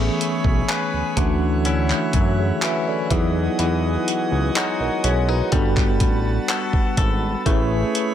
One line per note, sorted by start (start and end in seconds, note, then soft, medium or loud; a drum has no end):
0.00 0.98 E3 medium
0.00 0.98 A3 medium
0.00 1.27 A3 medium
0.00 0.98 B3 medium
0.00 0.99 C#4 medium
0.00 0.99 G#4 medium
0.00 1.16 G#4 medium
0.00 0.69 A4 medium
0.00 3.07 C#5 medium
0.00 1.16 B5 medium
0.21 closed hi-hat medium
0.44 0.63 B1 medium
0.44 kick medium
0.68 1.27 C#4 medium
0.68 1.27 G#4 medium
0.68 1.27 B4 medium
0.68 clap loud
0.68 closed hi-hat medium
0.93 1.03 D2 soft
1.17 1.93 D2 medium
1.17 3.10 D3 medium
1.17 2.72 E3 medium
1.17 2.72 A3 medium
1.17 2.72 C#4 medium
1.17 2.73 D4 medium
1.17 3.09 E4 medium
1.17 2.73 F#4 medium
1.17 3.09 F#5 medium
1.17 kick loud
1.17 closed hi-hat medium
1.65 2.61 F#3 medium
1.65 2.61 C#4 medium
1.65 2.63 E4 medium
1.65 closed hi-hat medium
1.90 clap medium
2.13 2.52 F#2 medium
2.13 kick medium
2.13 closed hi-hat medium
2.39 2.62 G#4 medium
2.39 2.62 C#5 medium
2.62 3.62 F#3 medium
2.62 3.20 C#4 medium
2.62 4.57 E4 medium
2.62 2.86 B4 medium
2.62 2.86 E5 medium
2.62 clap loud
2.62 closed hi-hat medium
2.88 3.33 A4 medium
2.88 3.33 D5 medium
3.10 3.48 E2 loud
3.10 3.58 E3 medium
3.10 4.65 F#3 medium
3.10 4.66 B3 medium
3.10 4.66 D#4 medium
3.10 4.66 E4 medium
3.10 7.42 F#4 medium
3.10 4.08 G#4 medium
3.10 5.50 D#5 medium
3.10 5.50 G#5 medium
3.10 kick loud
3.10 closed hi-hat medium
3.59 3.97 E2 loud
3.59 5.62 E3 medium
3.59 closed hi-hat medium
4.08 closed hi-hat medium
4.32 4.51 C#2 medium
4.55 5.52 G#3 medium
4.55 5.04 D#4 medium
4.55 5.63 F#4 medium
4.55 4.79 C#5 medium
4.55 4.79 F#5 medium
4.55 clap loud
4.55 closed hi-hat medium
4.80 4.90 B1 soft
4.80 5.04 A#4 medium
4.80 5.03 D#5 medium
5.04 5.42 B1 medium
5.04 5.28 C#4 medium
5.04 5.28 G#4 medium
5.04 5.28 C#5 medium
5.04 closed hi-hat medium
5.28 5.62 D#4 soft
5.28 5.53 F#4 medium
5.28 5.75 B4 medium
5.52 6.02 G1 medium
5.52 7.46 G3 medium
5.52 6.79 G3 medium
5.52 6.79 B3 medium
5.52 6.79 D4 medium
5.52 6.79 F#4 medium
5.52 6.80 A4 medium
5.52 7.44 B4 medium
5.52 7.44 A5 medium
5.52 kick loud
5.52 closed hi-hat medium
5.77 kick medium
5.77 clap medium
6.00 6.39 A1 medium
6.00 kick medium
6.00 closed hi-hat medium
6.49 7.56 B3 medium
6.49 7.56 F#4 medium
6.49 6.97 A4 medium
6.49 clap loud
6.49 closed hi-hat medium
6.73 kick medium
6.97 7.35 G#1 medium
6.97 8.14 A4 medium
6.97 kick medium
6.97 closed hi-hat medium
7.46 7.84 A1 loud
7.46 8.14 A3 medium
7.46 8.14 C#4 medium
7.46 8.14 E4 medium
7.46 8.14 G#4 medium
7.46 8.14 B4 medium
7.46 8.14 C#5 medium
7.46 8.14 B5 medium
7.46 kick loud
7.46 closed hi-hat medium
7.95 closed hi-hat medium